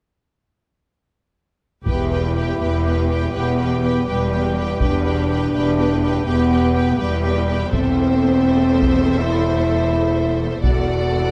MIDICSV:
0, 0, Header, 1, 8, 480
1, 0, Start_track
1, 0, Key_signature, 1, "minor"
1, 0, Tempo, 491400
1, 1823, Time_signature, 6, 3, 24, 8
1, 4698, Tempo, 486224
1, 11115, End_track
2, 0, Start_track
2, 0, Title_t, "Violin section"
2, 0, Program_c, 0, 48
2, 1826, Note_on_c, 0, 79, 38
2, 2060, Note_off_c, 0, 79, 0
2, 2071, Note_on_c, 0, 79, 34
2, 2303, Note_off_c, 0, 79, 0
2, 2317, Note_on_c, 0, 79, 35
2, 2535, Note_off_c, 0, 79, 0
2, 2546, Note_on_c, 0, 79, 35
2, 2768, Note_off_c, 0, 79, 0
2, 2779, Note_on_c, 0, 79, 35
2, 3012, Note_off_c, 0, 79, 0
2, 3023, Note_on_c, 0, 79, 39
2, 3255, Note_off_c, 0, 79, 0
2, 3266, Note_on_c, 0, 79, 42
2, 3486, Note_off_c, 0, 79, 0
2, 3498, Note_on_c, 0, 79, 37
2, 3731, Note_off_c, 0, 79, 0
2, 3746, Note_on_c, 0, 79, 39
2, 3963, Note_off_c, 0, 79, 0
2, 3974, Note_on_c, 0, 79, 39
2, 4202, Note_off_c, 0, 79, 0
2, 4214, Note_on_c, 0, 79, 35
2, 4445, Note_off_c, 0, 79, 0
2, 4456, Note_on_c, 0, 79, 43
2, 4690, Note_off_c, 0, 79, 0
2, 4702, Note_on_c, 0, 79, 45
2, 4924, Note_off_c, 0, 79, 0
2, 4936, Note_on_c, 0, 79, 38
2, 5163, Note_off_c, 0, 79, 0
2, 5175, Note_on_c, 0, 79, 46
2, 5399, Note_off_c, 0, 79, 0
2, 5410, Note_on_c, 0, 79, 44
2, 5644, Note_off_c, 0, 79, 0
2, 5656, Note_on_c, 0, 79, 39
2, 5888, Note_off_c, 0, 79, 0
2, 5900, Note_on_c, 0, 79, 45
2, 6122, Note_off_c, 0, 79, 0
2, 6134, Note_on_c, 0, 79, 51
2, 6362, Note_off_c, 0, 79, 0
2, 6373, Note_on_c, 0, 79, 43
2, 6592, Note_off_c, 0, 79, 0
2, 6604, Note_on_c, 0, 79, 45
2, 6836, Note_off_c, 0, 79, 0
2, 6848, Note_on_c, 0, 79, 47
2, 7078, Note_off_c, 0, 79, 0
2, 7090, Note_on_c, 0, 79, 42
2, 7334, Note_off_c, 0, 79, 0
2, 7348, Note_on_c, 0, 79, 46
2, 7584, Note_off_c, 0, 79, 0
2, 7586, Note_on_c, 0, 76, 56
2, 10416, Note_off_c, 0, 76, 0
2, 10459, Note_on_c, 0, 78, 50
2, 11115, Note_off_c, 0, 78, 0
2, 11115, End_track
3, 0, Start_track
3, 0, Title_t, "Violin section"
3, 0, Program_c, 1, 48
3, 1829, Note_on_c, 1, 71, 39
3, 2055, Note_off_c, 1, 71, 0
3, 2067, Note_on_c, 1, 71, 34
3, 2294, Note_off_c, 1, 71, 0
3, 2305, Note_on_c, 1, 71, 36
3, 2540, Note_off_c, 1, 71, 0
3, 2552, Note_on_c, 1, 71, 37
3, 2782, Note_off_c, 1, 71, 0
3, 2793, Note_on_c, 1, 71, 36
3, 3006, Note_off_c, 1, 71, 0
3, 3018, Note_on_c, 1, 71, 36
3, 3234, Note_off_c, 1, 71, 0
3, 3246, Note_on_c, 1, 71, 43
3, 3480, Note_off_c, 1, 71, 0
3, 3492, Note_on_c, 1, 71, 34
3, 3721, Note_off_c, 1, 71, 0
3, 3733, Note_on_c, 1, 71, 38
3, 3964, Note_off_c, 1, 71, 0
3, 3976, Note_on_c, 1, 71, 39
3, 4207, Note_off_c, 1, 71, 0
3, 4219, Note_on_c, 1, 71, 38
3, 4455, Note_off_c, 1, 71, 0
3, 4470, Note_on_c, 1, 71, 38
3, 4691, Note_off_c, 1, 71, 0
3, 4703, Note_on_c, 1, 71, 45
3, 4923, Note_off_c, 1, 71, 0
3, 4935, Note_on_c, 1, 71, 42
3, 5173, Note_off_c, 1, 71, 0
3, 5183, Note_on_c, 1, 71, 42
3, 5400, Note_off_c, 1, 71, 0
3, 5411, Note_on_c, 1, 71, 44
3, 5647, Note_off_c, 1, 71, 0
3, 5659, Note_on_c, 1, 71, 45
3, 5894, Note_off_c, 1, 71, 0
3, 5906, Note_on_c, 1, 71, 41
3, 6120, Note_off_c, 1, 71, 0
3, 6132, Note_on_c, 1, 71, 47
3, 6360, Note_off_c, 1, 71, 0
3, 6372, Note_on_c, 1, 71, 44
3, 6610, Note_off_c, 1, 71, 0
3, 6630, Note_on_c, 1, 71, 44
3, 6840, Note_off_c, 1, 71, 0
3, 6852, Note_on_c, 1, 71, 48
3, 7083, Note_off_c, 1, 71, 0
3, 7094, Note_on_c, 1, 71, 45
3, 7321, Note_off_c, 1, 71, 0
3, 7333, Note_on_c, 1, 71, 42
3, 7572, Note_on_c, 1, 72, 58
3, 7577, Note_off_c, 1, 71, 0
3, 10409, Note_off_c, 1, 72, 0
3, 10445, Note_on_c, 1, 74, 46
3, 11115, Note_off_c, 1, 74, 0
3, 11115, End_track
4, 0, Start_track
4, 0, Title_t, "Viola section"
4, 0, Program_c, 2, 48
4, 1822, Note_on_c, 2, 67, 37
4, 2058, Note_off_c, 2, 67, 0
4, 2074, Note_on_c, 2, 67, 33
4, 2304, Note_off_c, 2, 67, 0
4, 2318, Note_on_c, 2, 67, 38
4, 2538, Note_off_c, 2, 67, 0
4, 2549, Note_on_c, 2, 67, 34
4, 2764, Note_off_c, 2, 67, 0
4, 2776, Note_on_c, 2, 67, 34
4, 3012, Note_off_c, 2, 67, 0
4, 3026, Note_on_c, 2, 67, 37
4, 3241, Note_off_c, 2, 67, 0
4, 3253, Note_on_c, 2, 67, 40
4, 3489, Note_off_c, 2, 67, 0
4, 3502, Note_on_c, 2, 67, 36
4, 3724, Note_off_c, 2, 67, 0
4, 3735, Note_on_c, 2, 67, 39
4, 3964, Note_off_c, 2, 67, 0
4, 3975, Note_on_c, 2, 67, 39
4, 4203, Note_off_c, 2, 67, 0
4, 4215, Note_on_c, 2, 67, 37
4, 4449, Note_off_c, 2, 67, 0
4, 4461, Note_on_c, 2, 67, 35
4, 4684, Note_off_c, 2, 67, 0
4, 4696, Note_on_c, 2, 67, 42
4, 4927, Note_off_c, 2, 67, 0
4, 4939, Note_on_c, 2, 67, 42
4, 5164, Note_off_c, 2, 67, 0
4, 5176, Note_on_c, 2, 67, 45
4, 5403, Note_off_c, 2, 67, 0
4, 5415, Note_on_c, 2, 67, 43
4, 5643, Note_off_c, 2, 67, 0
4, 5655, Note_on_c, 2, 67, 40
4, 5892, Note_off_c, 2, 67, 0
4, 5903, Note_on_c, 2, 67, 38
4, 6134, Note_off_c, 2, 67, 0
4, 6145, Note_on_c, 2, 67, 48
4, 6370, Note_off_c, 2, 67, 0
4, 6382, Note_on_c, 2, 67, 43
4, 6601, Note_off_c, 2, 67, 0
4, 6613, Note_on_c, 2, 67, 48
4, 6836, Note_off_c, 2, 67, 0
4, 6848, Note_on_c, 2, 67, 46
4, 7090, Note_off_c, 2, 67, 0
4, 7101, Note_on_c, 2, 67, 44
4, 7331, Note_off_c, 2, 67, 0
4, 7342, Note_on_c, 2, 67, 40
4, 7582, Note_off_c, 2, 67, 0
4, 7583, Note_on_c, 2, 69, 49
4, 10415, Note_off_c, 2, 69, 0
4, 10453, Note_on_c, 2, 69, 45
4, 11115, Note_off_c, 2, 69, 0
4, 11115, End_track
5, 0, Start_track
5, 0, Title_t, "French horn section"
5, 0, Program_c, 3, 60
5, 1817, Note_on_c, 3, 64, 62
5, 3216, Note_off_c, 3, 64, 0
5, 3257, Note_on_c, 3, 59, 61
5, 3966, Note_on_c, 3, 55, 62
5, 3974, Note_off_c, 3, 59, 0
5, 4680, Note_off_c, 3, 55, 0
5, 4696, Note_on_c, 3, 62, 73
5, 6130, Note_on_c, 3, 59, 73
5, 6137, Note_off_c, 3, 62, 0
5, 6839, Note_off_c, 3, 59, 0
5, 6856, Note_on_c, 3, 55, 71
5, 7577, Note_on_c, 3, 60, 80
5, 7586, Note_off_c, 3, 55, 0
5, 8988, Note_off_c, 3, 60, 0
5, 9012, Note_on_c, 3, 64, 82
5, 10289, Note_off_c, 3, 64, 0
5, 10457, Note_on_c, 3, 66, 73
5, 11115, Note_off_c, 3, 66, 0
5, 11115, End_track
6, 0, Start_track
6, 0, Title_t, "Cello section"
6, 0, Program_c, 4, 48
6, 1821, Note_on_c, 4, 40, 46
6, 2458, Note_off_c, 4, 40, 0
6, 2539, Note_on_c, 4, 40, 46
6, 3171, Note_off_c, 4, 40, 0
6, 3256, Note_on_c, 4, 40, 48
6, 3888, Note_off_c, 4, 40, 0
6, 3973, Note_on_c, 4, 40, 46
6, 4613, Note_off_c, 4, 40, 0
6, 4700, Note_on_c, 4, 40, 54
6, 5335, Note_off_c, 4, 40, 0
6, 5418, Note_on_c, 4, 40, 52
6, 6053, Note_off_c, 4, 40, 0
6, 6136, Note_on_c, 4, 40, 61
6, 6772, Note_off_c, 4, 40, 0
6, 6851, Note_on_c, 4, 40, 56
6, 7498, Note_off_c, 4, 40, 0
6, 7581, Note_on_c, 4, 40, 56
6, 10414, Note_off_c, 4, 40, 0
6, 10455, Note_on_c, 4, 40, 52
6, 11115, Note_off_c, 4, 40, 0
6, 11115, End_track
7, 0, Start_track
7, 0, Title_t, "Double bass section"
7, 0, Program_c, 5, 48
7, 1828, Note_on_c, 5, 28, 47
7, 2462, Note_off_c, 5, 28, 0
7, 2546, Note_on_c, 5, 28, 47
7, 3175, Note_off_c, 5, 28, 0
7, 3259, Note_on_c, 5, 28, 50
7, 3890, Note_off_c, 5, 28, 0
7, 3980, Note_on_c, 5, 28, 47
7, 4617, Note_off_c, 5, 28, 0
7, 4703, Note_on_c, 5, 28, 49
7, 5337, Note_off_c, 5, 28, 0
7, 5425, Note_on_c, 5, 28, 53
7, 6057, Note_off_c, 5, 28, 0
7, 6142, Note_on_c, 5, 28, 56
7, 6774, Note_off_c, 5, 28, 0
7, 6860, Note_on_c, 5, 28, 55
7, 7503, Note_off_c, 5, 28, 0
7, 7592, Note_on_c, 5, 28, 59
7, 10419, Note_off_c, 5, 28, 0
7, 10453, Note_on_c, 5, 28, 48
7, 11115, Note_off_c, 5, 28, 0
7, 11115, End_track
8, 0, Start_track
8, 0, Title_t, "Taiko and cinematic ensemble drums"
8, 1816, Note_on_c, 9, 41, 43
8, 1914, Note_off_c, 9, 41, 0
8, 4695, Note_on_c, 9, 41, 45
8, 4793, Note_off_c, 9, 41, 0
8, 7583, Note_on_c, 9, 41, 46
8, 7682, Note_off_c, 9, 41, 0
8, 8661, Note_on_c, 9, 41, 35
8, 8759, Note_off_c, 9, 41, 0
8, 10451, Note_on_c, 9, 41, 45
8, 10549, Note_off_c, 9, 41, 0
8, 11115, End_track
0, 0, End_of_file